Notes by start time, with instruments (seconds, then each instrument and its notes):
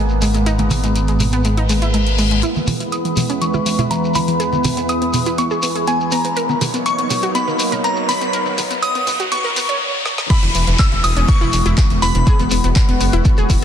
Already playing: detuned saw bass G#1, ambient pad G#3 A#3 B3
0.09 shekere
0.22 synth arpeggio sound G#3, open hi-hat, high conga, shekere
0.34 synth arpeggio sound G#3, closed hi-hat, shekere
0.46 synth arpeggio sound D#4, closed hi-hat, shekere
0.59 synth arpeggio sound G#3, closed hi-hat, high conga, shekere
0.70 synth arpeggio sound G#3, open hi-hat, high conga, low conga, shekere
0.84 synth arpeggio sound G#3, closed hi-hat, shekere
0.95 closed hi-hat, shekere
1.08 synth arpeggio sound G#3, closed hi-hat, shekere
1.20 synth arpeggio sound G#3, open hi-hat, low conga, shekere
1.32 synth arpeggio sound B3, closed hi-hat, shekere
1.44 synth arpeggio sound G#3, closed hi-hat, reverse cymbal, shekere
1.57 synth arpeggio sound D#4, closed hi-hat, shekere
1.69 synth arpeggio sound G#3, open hi-hat, shekere
1.82 synth arpeggio sound E4, closed hi-hat, shekere
1.93 synth arpeggio sound G#3, synth bell A#5, closed hi-hat, shekere
2.06 closed hi-hat, shekere
2.18 synth arpeggio sound G#3, synth bell B5, open hi-hat, shekere
2.31 synth arpeggio sound G#3, closed hi-hat, shekere
2.43 ambient pad E2 E3 G#3 B3 B4, synth arpeggio sound E4, closed hi-hat, riser, shekere
2.56 synth arpeggio sound E3, high conga, shekere
2.67 synth arpeggio sound E3, open hi-hat, high conga, low conga, shekere
2.80 synth arpeggio sound E3, closed hi-hat, shekere
2.92 synth pluck D#6, synth bell D#6, closed hi-hat, shekere
3.05 synth arpeggio sound E3, closed hi-hat, shekere
3.17 synth arpeggio sound E3, open hi-hat, low conga, shekere
3.29 synth arpeggio sound C#4, closed hi-hat, shekere
3.41 synth arpeggio sound E3, synth pluck C#6, synth bell C#6, closed hi-hat, shekere
3.53 synth arpeggio sound E4, high conga, shekere
3.66 synth arpeggio sound E3, open hi-hat, shekere
3.78 synth arpeggio sound E4, closed hi-hat, low conga, shekere
3.91 synth arpeggio sound E3, synth bell A#5, synth pluck A#5, closed hi-hat, shekere
4.04 shekere
4.15 synth arpeggio sound E3, synth bell B5, synth pluck B5, open hi-hat, high conga, shekere
4.28 synth arpeggio sound E3, closed hi-hat, shekere
4.40 synth arpeggio sound G#4, closed hi-hat, shekere
4.52 synth arpeggio sound B3, high conga, shekere
4.64 synth arpeggio sound B3, open hi-hat, high conga, low conga, shekere
4.77 synth arpeggio sound B3, closed hi-hat, shekere
4.89 synth pluck D#6, synth bell D#6, closed hi-hat, shekere
5.01 synth arpeggio sound B3, closed hi-hat, shekere
5.13 synth arpeggio sound B3, open hi-hat, low conga, shekere
5.26 synth arpeggio sound E4, closed hi-hat, shekere
5.38 synth arpeggio sound B3, synth pluck C#6, synth bell C#6, closed hi-hat, shekere
5.51 synth arpeggio sound G#4, shekere
5.63 synth arpeggio sound B3, open hi-hat, shekere
5.75 synth arpeggio sound G#4, closed hi-hat, shekere
5.87 synth arpeggio sound B3, synth pluck G#5, synth bell G#5, closed hi-hat, shekere
6.01 shekere
6.11 synth arpeggio sound B3, synth pluck A#5, synth bell A#5, open hi-hat, shekere
6.24 synth arpeggio sound B3, closed hi-hat, shekere
6.36 ambient pad B2 F#3 A#3 D#4 C#5, synth arpeggio sound A#4, closed hi-hat, shekere
6.49 synth arpeggio sound B3, high conga, shekere
6.61 synth arpeggio sound B3, open hi-hat, high conga, low conga, shekere
6.74 synth arpeggio sound B3, closed hi-hat, shekere
6.86 synth bell C#6, synth pluck C#6, closed hi-hat, shekere
6.98 synth arpeggio sound B3, closed hi-hat, shekere
7.10 synth arpeggio sound B3, open hi-hat, low conga, shekere
7.22 synth arpeggio sound F#4, closed hi-hat, shekere
7.35 synth arpeggio sound B3, synth pluck B5, synth bell B5, closed hi-hat, shekere
7.48 synth arpeggio sound A#4, high conga, shekere
7.59 synth arpeggio sound B3, open hi-hat, shekere
7.72 synth arpeggio sound A#4, closed hi-hat, low conga, shekere
7.84 synth arpeggio sound B3, synth pluck A#5, synth bell A#5, closed hi-hat, shekere
7.96 shekere
8.09 synth arpeggio sound B3, synth bell B5, synth pluck B5, open hi-hat, high conga, shekere
8.21 synth arpeggio sound B3, closed hi-hat, shekere
8.33 synth arpeggio sound A#4, closed hi-hat, shekere
8.46 synth arpeggio sound B3, high conga, shekere
8.58 synth arpeggio sound B3, open hi-hat, high conga, low conga, shekere
8.71 synth arpeggio sound B3, closed hi-hat, shekere
8.82 synth bell D#6, synth pluck D#6, closed hi-hat, shekere
8.95 synth arpeggio sound B3, closed hi-hat, shekere
9.07 synth arpeggio sound B3, open hi-hat, low conga, shekere
9.20 synth arpeggio sound F#4, closed hi-hat, shekere
9.32 synth arpeggio sound B3, synth pluck C#6, synth bell C#6, closed hi-hat, shekere
9.44 synth arpeggio sound A#4, shekere
9.56 synth arpeggio sound B3, open hi-hat, shekere
9.69 synth arpeggio sound C#5, closed hi-hat, shekere
10.06 snare
10.18 snare
10.30 ambient pad G#3 B3 E4, synth arpeggio sound E4, synth pluck B5, synth bell B5, kick, closed hi-hat, crash, downlifter, shekere
10.43 detuned saw bass E1, synth arpeggio sound E3, closed hi-hat, shekere
10.55 detuned saw bass E1, synth arpeggio sound E3, open hi-hat, shekere
10.67 detuned saw bass E1, synth arpeggio sound E3, closed hi-hat, shekere
10.79 synth bell E6, synth pluck E6, kick, clap, closed hi-hat, shekere
10.92 detuned saw bass E1, synth arpeggio sound E3, closed hi-hat, shekere
11.03 detuned saw bass E1, synth arpeggio sound E3, synth pluck D#6, synth bell D#6, open hi-hat, shekere
11.16 detuned saw bass E1, synth arpeggio sound C#4, closed hi-hat, shekere
11.28 synth arpeggio sound E3, synth pluck C#6, synth bell C#6, kick, closed hi-hat, shekere
11.41 detuned saw bass E1, synth arpeggio sound E4, shekere
11.53 detuned saw bass E1, synth arpeggio sound E3, open hi-hat, shekere
11.66 detuned saw bass E1, synth arpeggio sound E4, closed hi-hat, shekere
11.78 synth arpeggio sound E3, kick, clap, closed hi-hat, shekere
11.90 detuned saw bass E1, closed hi-hat, shekere
12.02 detuned saw bass E1, synth arpeggio sound E3, synth bell B5, synth pluck B5, open hi-hat, shekere
12.15 detuned saw bass E1, synth arpeggio sound E3, closed hi-hat, shekere
12.26 ambient pad F#4, synth arpeggio sound G#4, kick, closed hi-hat, shekere
12.39 detuned saw bass E1, synth arpeggio sound B3, closed hi-hat, shekere
12.51 detuned saw bass E1, synth arpeggio sound B3, open hi-hat, shekere
12.64 detuned saw bass E1, synth arpeggio sound B3, closed hi-hat, shekere
12.76 kick, clap, closed hi-hat, shekere
12.89 detuned saw bass E1, synth arpeggio sound B3, closed hi-hat, shekere
13.00 detuned saw bass F#1, synth arpeggio sound B3, open hi-hat, shekere
13.12 detuned saw bass E1, synth arpeggio sound E4, closed hi-hat, shekere
13.24 synth arpeggio sound B3, kick, closed hi-hat, shekere
13.37 detuned saw bass E1, synth arpeggio sound G#4, shekere
13.50 detuned saw bass E1, synth arpeggio sound B3, kick, open hi-hat, shekere